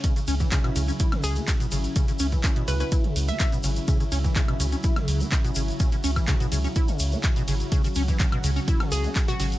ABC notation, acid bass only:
X:1
M:4/4
L:1/16
Q:1/4=125
K:C#m
V:1 name="Acid bass" clef=bass
C, C, C E, C, B,, C, C E C,2 B, z B,, C, z | C, C, C E, C, B,, C, C E C,2 B, z B,, C, z | C, C, C E, C, B,, C, C E C,2 B, z B,, C, z | C, C, C E, C, B,, C, C E C,2 B, z B,, C, z |
C, C, C E, C, B,, C, C E C,2 B, z B,, C, z |]